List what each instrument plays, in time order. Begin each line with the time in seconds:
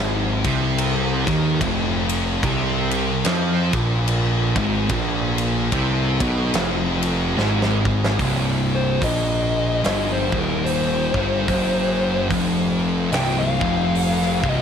Already playing: picked electric bass G#1, distorted electric guitar G#2
0.44 picked electric bass C2, distorted electric guitar C3, kick, ride
0.78 ride
1.27 picked electric bass D#2, distorted electric guitar D#3, kick, snare, ride
1.61 picked electric bass F1, distorted electric guitar F2, kick, ride
2.09 ride
2.43 picked electric bass C2, distorted electric guitar C3, kick, ride
2.91 ride
3.25 picked electric bass F2, distorted electric guitar F3, snare, ride
3.73 picked electric bass A#1, distorted electric guitar A#2, kick, ride
4.08 ride
4.56 picked electric bass G#1, distorted electric guitar G#2, kick, ride
4.89 picked electric bass A#1, distorted electric guitar A#2, kick, ride
5.38 ride
5.72 picked electric bass C2, distorted electric guitar C3, kick, ride
6.20 picked electric bass B1, distorted electric guitar B2, kick, ride
6.54 picked electric bass F1, distorted electric guitar F2, snare, ride
7.03 ride
7.37 picked electric bass G#1, distorted electric guitar G#2, snare
7.62 snare
7.85 kick
8.04 snare
8.19 picked electric bass C1, distorted electric guitar C2, kick, open hi-hat
8.75 lead electric guitar C5
9.01 picked electric bass A#1, distorted electric guitar A#2, lead electric guitar D#5, kick, open hi-hat
9.84 picked electric bass G1, distorted electric guitar G2, lead electric guitar D#5, snare, open hi-hat
10.12 lead electric guitar C5
10.32 picked electric bass D#1, distorted electric guitar D#2, kick
10.40 lead electric guitar A#4
10.65 lead electric guitar C5, open hi-hat
11.14 picked electric bass G1, distorted electric guitar G2, kick
11.48 picked electric bass F#1, distorted electric guitar F#2, kick, open hi-hat
12.30 picked electric bass F1, distorted electric guitar F2, kick, open hi-hat
13.12 picked electric bass C1, distorted electric guitar C2, lead electric guitar G5, snare, open hi-hat
13.40 lead electric guitar F5
13.61 picked electric bass F1, distorted electric guitar F2, kick
13.95 open hi-hat
14.21 snare
14.43 picked electric bass C1, distorted electric guitar C2, kick
14.49 lead electric guitar D#5